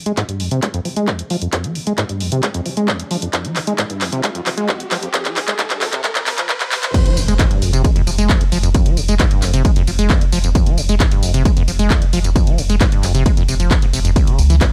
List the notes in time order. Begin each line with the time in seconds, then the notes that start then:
Already playing: riser
0.06 G#3, closed hi-hat
0.17 G#2, kick, clap, closed hi-hat
0.29 G2, closed hi-hat
0.40 F2, open hi-hat
0.51 C3, closed hi-hat
0.63 G#3, kick, clap, closed hi-hat
0.74 F2, closed hi-hat
0.85 F3, open hi-hat
0.96 G#3, closed hi-hat
1.08 E2, kick, clap
1.19 F2, closed hi-hat
1.30 F3, open hi-hat
1.42 F2, closed hi-hat
1.53 F2, kick, clap, closed hi-hat
1.64 F3, closed hi-hat
1.75 C3, open hi-hat
1.87 G#3, closed hi-hat
1.98 G#2, kick, clap, closed hi-hat
2.09 G2, closed hi-hat
2.20 F2, open hi-hat
2.32 C3, closed hi-hat
2.43 G#3, kick, clap, closed hi-hat
2.54 F2, closed hi-hat
2.66 F3, open hi-hat
2.77 G#3, closed hi-hat
2.88 E2, kick, clap
3.00 F2, closed hi-hat
3.11 F3, open hi-hat
3.22 F2, closed hi-hat
3.33 F2, kick, clap, closed hi-hat
3.45 F3, closed hi-hat
3.56 C3, clap, open hi-hat
3.67 G#3, closed hi-hat
3.78 G#2, kick, clap, closed hi-hat
3.90 G2, closed hi-hat
4.01 F2, clap, open hi-hat
4.12 C3, closed hi-hat
4.24 G#3, kick, clap, closed hi-hat
4.35 F2, closed hi-hat
4.46 F3, clap, open hi-hat
4.57 G#3, closed hi-hat
4.69 E2, kick, clap
4.80 F2, closed hi-hat
4.91 F3, clap, open hi-hat
5.03 F2, closed hi-hat
5.14 F2, kick, clap, closed hi-hat
5.25 F3, clap, closed hi-hat
5.36 C3, clap, open hi-hat
5.48 G#3, clap, closed hi-hat
5.59 G#2, kick, clap, closed hi-hat
5.70 G2, clap, closed hi-hat
5.81 F2, clap, open hi-hat
5.93 C3, clap, closed hi-hat
6.04 G#3, kick, clap, closed hi-hat
6.15 F2, clap, closed hi-hat
6.26 C3, clap, open hi-hat
6.38 F3, clap, closed hi-hat
6.49 F2, kick, clap, closed hi-hat
6.60 G#2, clap, closed hi-hat
6.72 C3, clap, open hi-hat
6.83 F2, clap, closed hi-hat
6.94 F2, kick, closed hi-hat, crash, ride, tambourine, impact
7.05 F3, closed hi-hat, ride
7.17 F1 C3, open hi-hat, ride, tambourine
7.28 F1 G#3, closed hi-hat, ride, tambourine
7.39 G#2, kick, clap, closed hi-hat, ride, tambourine
7.50 G2, closed hi-hat, ride
7.62 F1 F2, open hi-hat, ride, tambourine
7.73 F1 C3, closed hi-hat, ride, tambourine
7.84 G#3, kick, closed hi-hat, ride, tambourine
7.96 F2, closed hi-hat, ride
8.07 F1 F3, open hi-hat, ride, tambourine
8.18 F1 G#3, closed hi-hat, ride, tambourine
8.29 E2, kick, clap, ride, tambourine
8.41 F2, closed hi-hat, ride
8.52 F1 F3, open hi-hat, ride, tambourine
8.63 F1 F2, closed hi-hat, ride, tambourine
8.74 F2, kick, closed hi-hat, ride, tambourine
8.86 F3, closed hi-hat, ride
8.97 F1 C3, open hi-hat, ride, tambourine
9.08 F1 G#3, closed hi-hat, ride, tambourine
9.20 G#2, kick, clap, closed hi-hat, ride, tambourine
9.31 G2, closed hi-hat, ride
9.42 F1 F2, clap, open hi-hat, ride, tambourine
9.53 F1 C3, closed hi-hat, ride, tambourine
9.65 G#3, kick, closed hi-hat, ride, tambourine
9.76 F2, closed hi-hat, ride
9.87 F1 F3, open hi-hat, ride, tambourine
9.99 F1 G#3, closed hi-hat, ride, tambourine
10.10 E2, kick, clap, ride, tambourine
10.21 F2, closed hi-hat, ride
10.32 F1 F3, open hi-hat, ride, tambourine
10.44 F1 F2, closed hi-hat, ride, tambourine
10.55 F2, kick, closed hi-hat, ride, tambourine
10.66 F3, closed hi-hat, ride
10.78 F1 C3, open hi-hat, ride, tambourine
10.89 F1 G#3, closed hi-hat, ride, tambourine
11.00 G#2, kick, clap, closed hi-hat, ride, tambourine
11.11 G2, closed hi-hat, ride
11.23 F1 F2, open hi-hat, ride, tambourine
11.34 F1 C3, closed hi-hat, ride, tambourine
11.45 G#3, kick, closed hi-hat, ride, tambourine
11.57 F2, closed hi-hat, ride
11.68 F1 F3, open hi-hat, ride, tambourine
11.79 F1 G#3, closed hi-hat, ride, tambourine
11.90 E2, kick, clap, ride, tambourine
12.02 F2, closed hi-hat, ride
12.13 F1 F3, open hi-hat, ride, tambourine
12.24 F1 F2, closed hi-hat, ride, tambourine
12.36 F2, kick, closed hi-hat, ride, tambourine
12.47 F3, closed hi-hat, ride
12.58 F1 C3, open hi-hat, ride, tambourine
12.69 F1 G#3, closed hi-hat, ride, tambourine
12.81 G#2, kick, clap, closed hi-hat, ride, tambourine
12.92 G2, closed hi-hat, ride
13.03 F1 F2, clap, open hi-hat, ride, tambourine
13.14 F1 C3, closed hi-hat, ride, tambourine
13.26 G#3, kick, closed hi-hat, ride, tambourine
13.37 F2, closed hi-hat, ride
13.48 F1 C3, open hi-hat, ride, tambourine
13.60 F1 F3, closed hi-hat, ride, tambourine
13.71 F2, kick, clap, ride, tambourine
13.82 G#2, closed hi-hat, ride
13.93 F1 C3, open hi-hat, ride, tambourine
14.05 F1 F2, closed hi-hat, ride, tambourine
14.16 C#2, kick, closed hi-hat, ride, tambourine
14.27 C#3, closed hi-hat, ride
14.38 C#2 G#2, open hi-hat, ride, tambourine
14.50 C#2 E3, closed hi-hat, ride, tambourine
14.61 E2, kick, clap, closed hi-hat, ride, tambourine